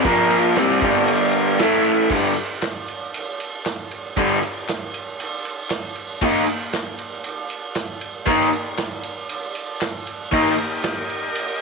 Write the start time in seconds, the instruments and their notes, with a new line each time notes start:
0.03 overdriven electric guitar A#2 F3 A#3, transistor combo organ F4 A#4 F5, kick, ride
0.30 ride
0.56 overdriven electric guitar C3 G3 C4, transistor combo organ G4 A#4, snare, clap, ride
0.60 transistor combo organ D5
0.81 overdriven electric guitar G2 D3 G3, kick, ride
1.08 ride
1.33 ride
1.57 overdriven electric guitar A2 E3, transistor combo organ E4 A4 E5, snare, clap, ride
1.61 overdriven electric guitar A3
1.85 ride
2.10 overdriven electric guitar G2 D3 G3, kick, crash
2.36 ride
2.62 snare, clap, ride
2.88 ride
3.14 ride
3.40 ride
3.65 snare, clap, ride
3.91 ride
4.17 overdriven electric guitar G2 D3 G3, kick, ride
4.43 ride
4.68 snare, clap, ride
4.94 ride
5.20 ride
5.45 ride
5.70 snare, clap, ride
5.96 ride
6.21 overdriven electric guitar D#3 A#3 D#4, kick, crash
6.47 ride
6.73 snare, clap, ride
6.99 ride
7.24 ride
7.50 ride
7.75 snare, clap, ride
8.01 ride
8.26 overdriven electric guitar D#3 A#3 D#4, kick, ride
8.53 ride
8.78 snare, clap, ride
9.03 ride
9.29 ride
9.55 ride
9.81 snare, clap, ride
10.07 ride
10.32 overdriven electric guitar D#3 A#3 D#4, transistor combo organ G4 A#4 D#5, kick, crash
10.58 ride
10.83 snare, clap, ride
11.10 ride
11.35 ride